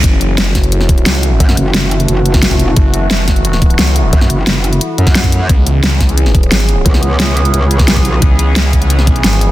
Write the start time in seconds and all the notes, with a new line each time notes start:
Already playing: E3 C#4
0.04 F#1 A3 F#4, kick, closed hi-hat
0.21 F#1, closed hi-hat
0.38 snare, closed hi-hat
0.55 kick, snare, closed hi-hat
0.64 closed hi-hat
0.72 closed hi-hat
0.81 snare
0.89 kick, closed hi-hat
0.98 closed hi-hat
1.06 C#2, snare, closed hi-hat
1.15 closed hi-hat
1.23 closed hi-hat
1.40 F#2, kick, closed hi-hat
1.49 snare
1.57 F#1, closed hi-hat
1.74 snare, closed hi-hat
1.91 closed hi-hat
2.00 closed hi-hat
2.08 F#1, closed hi-hat
2.26 closed hi-hat
2.34 kick, snare, closed hi-hat
2.42 snare, closed hi-hat
2.51 kick, closed hi-hat
2.55 F1
2.59 closed hi-hat
2.76 F#1 B3, kick, closed hi-hat
2.94 F#1, closed hi-hat
3.11 snare, closed hi-hat
3.28 kick, snare, closed hi-hat
3.36 closed hi-hat
3.45 closed hi-hat
3.53 snare
3.62 kick, closed hi-hat
3.70 closed hi-hat
3.79 C#2, snare, closed hi-hat
3.87 closed hi-hat
3.96 closed hi-hat
4.13 F#2, kick, closed hi-hat
4.21 snare
4.30 F#1, closed hi-hat
4.47 snare, closed hi-hat
4.64 closed hi-hat
4.73 closed hi-hat
4.81 closed hi-hat
4.98 F#2, closed hi-hat
5.07 kick, snare, closed hi-hat
5.15 snare, closed hi-hat
5.24 kick, closed hi-hat
5.32 closed hi-hat
5.49 C#2 E3 B3 C#4 G#4, kick, closed hi-hat
5.66 C#2, closed hi-hat
5.84 snare, closed hi-hat
6.01 kick, snare, closed hi-hat
6.09 closed hi-hat
6.18 closed hi-hat
6.26 snare
6.35 kick, closed hi-hat
6.43 closed hi-hat
6.52 G#1, snare, closed hi-hat
6.60 closed hi-hat
6.69 closed hi-hat
6.86 C#2, kick, closed hi-hat
6.94 snare
7.03 C#2, closed hi-hat
7.20 snare, closed hi-hat
7.37 closed hi-hat
7.45 closed hi-hat
7.54 C#2, closed hi-hat
7.71 closed hi-hat
7.79 kick, snare, closed hi-hat
7.88 snare, closed hi-hat
7.96 kick, closed hi-hat
8.01 C2
8.05 closed hi-hat
8.22 C#2, kick, closed hi-hat
8.39 C#2, closed hi-hat
8.56 snare, closed hi-hat
8.73 kick, closed hi-hat
8.82 closed hi-hat
8.90 closed hi-hat
8.98 C2, snare
9.07 kick, closed hi-hat
9.16 closed hi-hat
9.24 G#1, snare, closed hi-hat
9.33 closed hi-hat
9.41 closed hi-hat